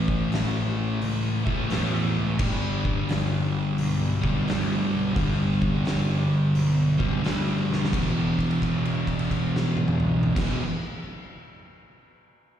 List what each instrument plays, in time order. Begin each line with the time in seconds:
Already playing: picked electric bass A1, distorted electric guitar A2 E3 A3
0.08 kick
0.32 picked electric bass A1, snare, open hi-hat
1.01 picked electric bass C#2, open hi-hat
1.46 distorted electric guitar A2 E3 A3, kick
1.68 distorted electric guitar A2 E3 A3, open hi-hat
1.72 picked electric bass E2, snare
2.18 picked electric bass C#2
2.38 picked electric bass G1, distorted electric guitar G2 D3 G3, kick, crash
2.85 kick
3.09 picked electric bass G1, snare, open hi-hat
3.78 picked electric bass B1, open hi-hat
4.21 distorted electric guitar G2 D3 G3, kick
4.45 picked electric bass D2, distorted electric guitar G2 D3 G3, open hi-hat
4.50 snare
4.93 picked electric bass B1
5.14 picked electric bass G1, distorted electric guitar G2 D3 G3, kick, open hi-hat
5.62 kick
5.85 picked electric bass G1, snare, open hi-hat
6.55 picked electric bass B1, open hi-hat
6.98 distorted electric guitar G2 D3 G3, kick
7.23 picked electric bass D2, distorted electric guitar G2 D3 G3, snare, open hi-hat
7.69 picked electric bass B1, snare
7.85 snare
7.92 picked electric bass E1, distorted electric guitar E2 B2, kick, crash
7.96 distorted electric guitar E3
8.39 kick, crash
8.51 crash
8.62 kick, crash
8.85 crash
9.07 kick, crash
9.19 crash
9.31 kick, crash
9.56 snare
9.77 high tom
9.88 mid tom
10.00 mid tom
10.23 floor tom
10.35 picked electric bass E1, distorted electric guitar E2 B2, kick, snare, crash
10.39 distorted electric guitar E3